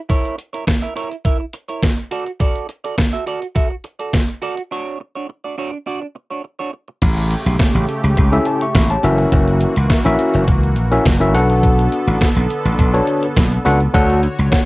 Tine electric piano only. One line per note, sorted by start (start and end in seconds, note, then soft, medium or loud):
8.32 8.64 C#4 medium
8.32 8.64 E4 medium
8.32 8.64 G4 medium
8.32 8.64 A4 medium
8.32 8.46 E5 loud
8.46 8.61 C#5 medium
8.46 8.61 A5 medium
8.62 8.89 E5 medium
8.62 8.89 C#6 medium
8.90 9.18 C#5 medium
8.90 9.18 A5 medium
9.03 9.73 C#4 medium
9.03 9.74 E4 medium
9.03 9.74 F#4 medium
9.03 9.74 A#4 medium
9.03 9.74 E5 loud
9.90 9.97 A#4 medium
9.90 9.97 E5 loud
10.05 10.43 C#4 medium
10.05 10.43 E4 medium
10.05 10.43 F#4 medium
10.05 10.43 A#4 medium
10.05 10.43 E5 loud
10.91 11.04 C#4 loud
10.91 11.04 E4 medium
10.91 11.04 F#4 medium
10.91 11.04 A#4 medium
10.91 11.04 E5 loud
11.20 11.34 C#4 medium
11.20 11.34 E4 medium
11.20 11.33 F#4 medium
11.20 11.34 A#4 medium
11.20 11.35 E5 loud
11.34 12.27 D4 medium
11.34 12.27 F#4 medium
11.34 12.27 A4 medium
11.34 12.27 B4 medium
11.34 12.27 F#5 loud
12.93 13.25 D4 medium
12.93 13.25 F#4 medium
12.93 13.26 A4 medium
12.93 13.26 B4 medium
12.93 13.26 C#5 loud
13.65 13.79 D4 loud
13.65 13.79 F#4 loud
13.65 13.79 A4 medium
13.65 13.79 B4 medium
13.65 13.79 F#5 loud
13.93 14.19 D4 loud
13.93 14.20 F#4 medium
13.93 14.20 A4 medium
13.93 14.20 C#5 medium
13.93 14.20 F#5 loud
14.51 14.58 C#5 medium
14.51 14.59 F#5 loud